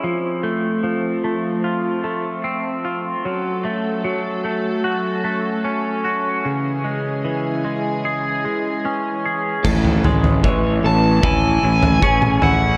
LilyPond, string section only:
\new Staff \with { instrumentName = "String section" } { \time 4/4 \key a \major \tempo 4 = 75 << { f1 | <fis a'>1 | <e gis'>1 | e1 | } \\ { c'1 | cis'1~ | cis'1 | cis'1 | } >> }